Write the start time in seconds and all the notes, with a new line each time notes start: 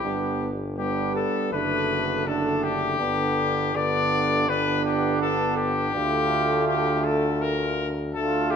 Already playing: G4
0.03 G1 G3 B3 D4
0.77 G3 B3 D4 G4
1.15 A4
1.52 F#1 D3 A3 D4 B4
2.26 D3 A3 D4 A4
2.63 G4
2.99 G1 D3 B3 D4
3.75 D3 B3 D4 D5
4.49 D3 B3 D4 B4
4.85 G4
5.22 A4
5.57 G4
5.95 D2 D3 A3 F4
6.67 G4
7.04 A4
7.41 A#4
8.14 D3 A3 F4 A4
8.50 G4